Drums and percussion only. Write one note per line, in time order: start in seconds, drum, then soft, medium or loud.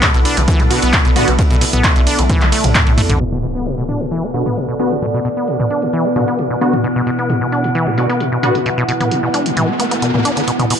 0.02 kick loud
0.02 clap loud
0.02 closed hi-hat medium
0.02 mid tom medium
0.02 ride medium
0.14 ride medium
0.25 open hi-hat medium
0.25 ride medium
0.37 closed hi-hat medium
0.37 ride medium
0.48 kick loud
0.48 closed hi-hat medium
0.48 ride medium
0.60 mid tom medium
0.60 ride medium
0.71 open hi-hat loud
0.71 ride medium
0.82 closed hi-hat medium
0.82 ride medium
0.93 kick loud
0.93 clap loud
0.93 closed hi-hat medium
0.93 ride medium
1.05 ride medium
1.16 open hi-hat medium
1.16 mid tom medium
1.16 ride medium
1.28 closed hi-hat medium
1.28 ride medium
1.39 kick loud
1.39 closed hi-hat medium
1.39 ride medium
1.51 ride medium
1.61 open hi-hat loud
1.61 ride medium
1.73 closed hi-hat medium
1.73 mid tom medium
1.73 ride medium
1.84 kick loud
1.84 clap loud
1.84 closed hi-hat medium
1.84 ride medium
1.96 ride medium
2.07 open hi-hat medium
2.07 ride medium
2.19 closed hi-hat medium
2.19 ride medium
2.30 kick loud
2.30 closed hi-hat medium
2.30 mid tom medium
2.30 high tom medium
2.30 ride medium
2.41 clap medium
2.41 high tom medium
2.41 ride medium
2.52 open hi-hat loud
2.52 ride medium
2.64 closed hi-hat medium
2.64 mid tom medium
2.64 ride medium
2.75 kick loud
2.75 clap loud
2.75 closed hi-hat medium
2.75 mid tom medium
2.75 ride medium
2.87 mid tom medium
2.87 ride medium
2.98 mid tom loud
2.98 open hi-hat medium
2.98 ride medium
3.10 closed hi-hat medium
3.10 mid tom medium
3.10 ride medium
3.20 closed hi-hat medium
3.32 mid tom medium
3.43 closed hi-hat medium
3.55 closed hi-hat medium
3.66 closed hi-hat medium
3.89 closed hi-hat medium
3.89 mid tom medium
4.01 closed hi-hat medium
4.11 closed hi-hat medium
4.34 closed hi-hat medium
4.46 closed hi-hat medium
4.46 mid tom medium
4.57 closed hi-hat medium
4.80 closed hi-hat medium
4.92 closed hi-hat medium
5.02 closed hi-hat medium
5.02 mid tom medium
5.25 closed hi-hat medium
5.37 closed hi-hat medium
5.48 closed hi-hat medium
5.60 mid tom medium
5.70 closed hi-hat medium
5.82 closed hi-hat medium
5.93 closed hi-hat medium
6.16 closed hi-hat medium
6.16 mid tom medium
6.28 closed hi-hat medium
6.39 closed hi-hat medium
6.61 closed hi-hat loud
6.73 closed hi-hat medium
6.73 mid tom medium
6.84 closed hi-hat medium
7.07 closed hi-hat medium
7.19 closed hi-hat medium
7.30 closed hi-hat medium
7.30 mid tom medium
7.52 closed hi-hat medium
7.64 closed hi-hat medium
7.75 closed hi-hat medium
7.87 mid tom medium
7.98 closed hi-hat medium
8.10 closed hi-hat medium
8.20 closed hi-hat medium
8.43 closed hi-hat medium
8.43 mid tom medium
8.55 closed hi-hat medium
8.66 closed hi-hat medium
8.89 closed hi-hat medium
9.01 closed hi-hat medium
9.01 mid tom medium
9.11 closed hi-hat medium
9.34 closed hi-hat medium
9.46 closed hi-hat medium
9.57 closed hi-hat medium
9.57 mid tom medium
9.80 closed hi-hat medium
9.91 closed hi-hat medium
10.02 closed hi-hat medium
10.14 mid tom medium
10.25 closed hi-hat medium
10.37 closed hi-hat medium
10.48 closed hi-hat medium
10.60 closed hi-hat medium
10.60 mid tom medium
10.70 open hi-hat loud